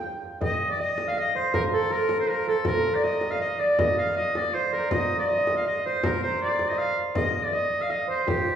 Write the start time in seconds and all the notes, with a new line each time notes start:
Already playing: A#4 D#5 F5 G5
0.04 frame drum
0.23 frame drum
0.41 D#5, frame drum
0.60 frame drum
0.69 D5
0.79 D#5
0.98 frame drum
1.07 F5
1.17 D#5, frame drum
1.35 C5, frame drum
1.54 A#4, frame drum
1.72 A4, frame drum
1.91 A#4
2.09 frame drum
2.18 C5
2.27 A#4, frame drum
2.47 A4, frame drum
2.65 A#4, frame drum
2.84 frame drum
2.95 D5
3.04 D#5
3.21 frame drum
3.31 F5
3.40 D#5, frame drum
3.59 D5, frame drum
3.79 D#5, frame drum
3.98 F5
4.16 D#5, frame drum
4.35 D5, frame drum
4.54 C5, frame drum
4.73 A#4
4.90 D#5, frame drum
5.10 frame drum
5.18 D5
5.28 D#5
5.40 D#5
5.47 frame drum
5.53 D#5 F5
5.66 D#5, frame drum
5.85 C5, frame drum
6.04 A#4, frame drum
6.23 C5
6.42 D5
6.59 frame drum
6.69 D#5
6.78 F5, frame drum
6.98 frame drum
7.15 D#5, frame drum
7.34 frame drum
7.44 D5
7.52 D#5
7.80 F5
7.90 D#5, frame drum
8.08 C5, frame drum
8.27 G4, frame drum